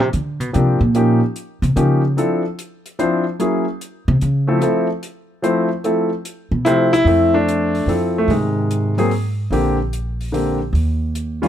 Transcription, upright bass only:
0.00 C3
0.14 D3
0.40 B2
0.55 C3
0.81 A#2
1.62 C3
1.76 C#3
4.08 C3
4.22 C#3
6.51 B2
6.67 C3
7.05 F2
7.86 F2
8.28 G#2
9.50 A#1
10.73 D#2

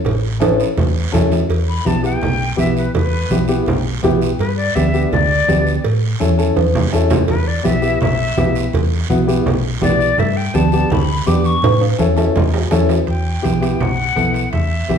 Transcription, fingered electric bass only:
0.05 A1
0.77 E2
1.13 E2
1.49 E2
1.86 B1
2.22 B1
2.58 B1
2.94 E2
3.30 B1
3.67 B1
4.03 B1
4.39 G2
4.76 D2
5.12 D2
5.48 D2
5.85 A2
6.20 E2
6.56 E2
6.93 E2
7.29 E2
7.66 B1
8.02 B1
8.37 B1
8.74 E2
9.10 B1
9.46 B1
9.82 B1
10.19 G2
10.54 D2
10.91 D2
11.27 E2
11.63 A2
12.00 E2
12.36 E2
12.72 E2
13.08 E2
13.45 B1
13.80 B1
14.16 B1
14.53 E2
14.89 B1

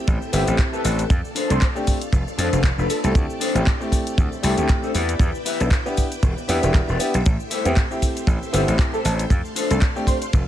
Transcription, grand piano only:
Already playing: C4 E4 G4
0.33 B3 C4 E4 G4
0.47 C4 E4 G4
1.49 A3 C4 D4 A4
1.75 A3 C4 D4 G4
3.04 A3 C4 E4 G4
3.55 A3 C4 E4 G4
3.80 A3 C4 E4 G4
4.43 A3 C4 E4 G4
4.57 A3 C4 E4 G4
5.60 B3 D4 E4 A4
5.86 B3 D4 E4 G4
6.49 B3 D4 E4 G4
6.62 B3 D4 E4 G4
6.99 B3 D4 E4 G4
7.65 B3 C4 E4 G4
7.91 C4 E4 G4
8.53 B3 C4 E4 G4
8.67 C4 E4 G4
9.70 A3 C4 D4 A4
9.96 A3 C4 D4 G4

